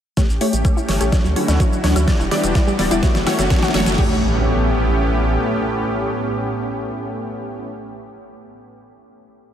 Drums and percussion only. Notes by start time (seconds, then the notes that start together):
0.17 kick, snare, closed hi-hat, high woodblock, shaker
0.30 shaker
0.41 open hi-hat
0.53 closed hi-hat, shaker
0.65 kick, closed hi-hat, high woodblock, shaker
0.78 shaker
0.89 snare, open hi-hat
1.01 closed hi-hat, shaker
1.12 kick, snare, closed hi-hat, high woodblock, shaker
1.25 shaker
1.36 open hi-hat, high conga
1.48 snare, closed hi-hat, low conga, high woodblock, shaker
1.60 kick, closed hi-hat, shaker
1.73 shaker
1.84 snare, open hi-hat
1.96 closed hi-hat, high woodblock, shaker
2.08 kick, snare, closed hi-hat, shaker
2.20 shaker
2.31 snare, open hi-hat
2.44 closed hi-hat, high woodblock, shaker
2.55 kick, snare, closed hi-hat, shaker
2.68 shaker
2.79 snare, open hi-hat, high woodblock
2.91 closed hi-hat, high conga, shaker
3.03 kick, snare, closed hi-hat, shaker
3.15 snare, high conga, shaker
3.27 snare, open hi-hat, high conga, low conga, high woodblock
3.39 snare, closed hi-hat, shaker
3.50 kick, snare, closed hi-hat, shaker
3.56 snare
3.63 snare, shaker
3.68 snare
3.74 snare, open hi-hat, high conga, high woodblock
3.80 snare
3.86 snare, closed hi-hat, shaker
3.92 snare
3.98 kick, crash